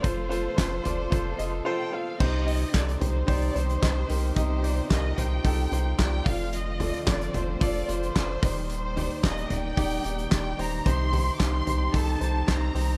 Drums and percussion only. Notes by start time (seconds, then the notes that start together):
0.04 kick, closed hi-hat
0.32 closed hi-hat
0.58 kick, snare, clap, closed hi-hat
0.85 closed hi-hat, floor tom
1.12 kick, closed hi-hat
1.39 closed hi-hat
2.20 kick, crash
2.47 hi-hat pedal, open hi-hat
2.61 open hi-hat
2.74 kick, snare, clap, hi-hat pedal, open hi-hat
2.88 hi-hat pedal
3.01 floor tom, hi-hat pedal, open hi-hat
3.28 kick, hi-hat pedal, open hi-hat
3.42 open hi-hat
3.56 hi-hat pedal, open hi-hat
3.69 hi-hat pedal
3.83 kick, snare, clap, hi-hat pedal, open hi-hat
4.10 hi-hat pedal, open hi-hat
4.36 kick, hi-hat pedal, open hi-hat
4.64 hi-hat pedal, open hi-hat
4.91 kick, snare, clap, hi-hat pedal, open hi-hat
5.18 floor tom, hi-hat pedal, open hi-hat
5.45 kick, hi-hat pedal, open hi-hat
5.72 hi-hat pedal, open hi-hat
5.99 kick, snare, clap, hi-hat pedal, open hi-hat
6.26 kick, hi-hat pedal, open hi-hat
6.53 hi-hat pedal, open hi-hat
6.80 floor tom, hi-hat pedal, open hi-hat
6.94 open hi-hat
7.07 kick, snare, clap, hi-hat pedal, open hi-hat
7.21 hi-hat pedal
7.34 floor tom, hi-hat pedal, open hi-hat
7.61 kick, hi-hat pedal, open hi-hat
7.75 open hi-hat
7.89 hi-hat pedal, open hi-hat
8.03 hi-hat pedal
8.16 kick, snare, clap, hi-hat pedal, open hi-hat
8.43 kick, hi-hat pedal, open hi-hat
8.70 hi-hat pedal, open hi-hat
8.97 floor tom, hi-hat pedal, open hi-hat
9.11 open hi-hat
9.24 kick, snare, clap, hi-hat pedal, open hi-hat
9.37 hi-hat pedal
9.50 floor tom, hi-hat pedal, open hi-hat
9.77 kick, hi-hat pedal, open hi-hat
9.91 open hi-hat
10.04 hi-hat pedal, open hi-hat
10.18 hi-hat pedal
10.31 kick, snare, clap, hi-hat pedal, open hi-hat
10.59 hi-hat pedal, open hi-hat
10.86 kick, hi-hat pedal, open hi-hat
11.13 floor tom, hi-hat pedal, open hi-hat
11.40 kick, snare, clap, hi-hat pedal, open hi-hat
11.67 floor tom, hi-hat pedal, open hi-hat
11.94 kick, hi-hat pedal, open hi-hat
12.21 hi-hat pedal, open hi-hat
12.48 kick, snare, clap, hi-hat pedal, open hi-hat
12.75 hi-hat pedal, open hi-hat